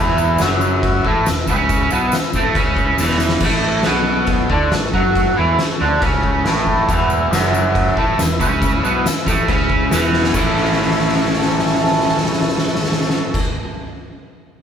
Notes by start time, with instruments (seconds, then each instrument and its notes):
Already playing: fretless electric bass E1, transistor combo organ E4 B4 E5
0.00 overdriven electric guitar E2 E3
0.18 tambourine
0.38 fretless electric bass F#1, overdriven electric guitar F#2 F#3, snare, tambourine, crash
0.61 tambourine
0.83 kick, crash
1.04 fretless electric bass A1, overdriven electric guitar A2 A3, kick
1.26 fretless electric bass E1, overdriven electric guitar E2, snare, tambourine, crash
1.47 fretless electric bass C#2, overdriven electric guitar C#3 C#4, kick, tambourine
1.69 kick, tambourine, crash
1.90 fretless electric bass B1, overdriven electric guitar B2 B3, tambourine
2.12 muted fretless electric bass stroke, muted overdriven electric guitar stroke, snare, tambourine, crash
2.33 fretless electric bass A1, overdriven electric guitar A2 A3, kick, tambourine
2.55 fretless electric bass C#2, overdriven electric guitar C#3 C#4, kick, tambourine, crash
2.77 kick, tambourine
2.97 fretless electric bass E1, overdriven electric guitar E2 E3, snare, tambourine
3.09 snare
3.18 snare, tambourine
3.29 snare
3.40 fretless electric bass A1, overdriven electric guitar A2 A3, transistor combo organ E4, kick, crash
3.45 transistor combo organ A4 C#5
3.83 fretless electric bass B1, overdriven electric guitar B2 B3, snare, crash
4.26 kick, crash
4.50 fretless electric bass D2, overdriven electric guitar D3 D4, kick
4.72 fretless electric bass A1, overdriven electric guitar A2, snare, crash
4.94 fretless electric bass F#2, overdriven electric guitar F#3 F#4, kick
5.16 kick, crash
5.36 fretless electric bass E2, overdriven electric guitar E3 E4
5.58 muted overdriven electric guitar stroke, muted fretless electric bass stroke, snare, crash
5.80 fretless electric bass D2, overdriven electric guitar D3 D4
6.02 fretless electric bass C#2, overdriven electric guitar C#3 C#4, kick, crash
6.23 kick
6.43 fretless electric bass A1, overdriven electric guitar A2 A3, transistor combo organ F#5, snare, crash
6.57 transistor combo organ G#5
6.67 kick
6.75 transistor combo organ A5
6.89 fretless electric bass E1, overdriven electric guitar E2 E3, transistor combo organ E4 B4, kick, tambourine, crash
6.93 transistor combo organ E5
7.10 tambourine
7.31 fretless electric bass F#1, overdriven electric guitar F#2 F#3, snare, tambourine, crash
7.54 tambourine
7.75 kick, crash
7.97 fretless electric bass A1, overdriven electric guitar A2 A3, kick
8.19 fretless electric bass E1, overdriven electric guitar E2, snare, tambourine, crash
8.40 fretless electric bass C#2, overdriven electric guitar C#3 C#4, kick, tambourine
8.62 kick, tambourine, crash
8.84 fretless electric bass B1, overdriven electric guitar B2 B3, tambourine
9.06 muted overdriven electric guitar stroke, muted fretless electric bass stroke, snare, tambourine, crash
9.27 fretless electric bass A1, overdriven electric guitar A2 A3, kick, tambourine
9.48 fretless electric bass C#2, overdriven electric guitar C#3 C#4, kick, crash
9.70 kick
9.91 fretless electric bass E1, overdriven electric guitar E2 E3, snare, tambourine, crash
10.13 snare
10.24 snare
10.34 fretless electric bass A1, overdriven electric guitar A3 C#4 E4, transistor combo organ E4 A4 C#5, kick, crash, tambourine
10.38 overdriven electric guitar A4
10.56 snare
10.65 snare
10.72 snare
10.82 snare
10.91 snare
10.99 snare
11.08 snare
11.16 snare
11.25 snare
11.33 snare
11.41 snare
11.49 snare
11.59 snare
11.66 snare
11.75 snare
11.84 snare
11.92 snare
12.00 snare
12.09 snare
12.17 snare
12.25 snare
12.33 snare
12.41 snare
12.49 snare
12.58 snare
12.67 snare
12.75 snare
12.84 snare
12.92 snare
13.01 snare
13.10 snare
13.34 kick, crash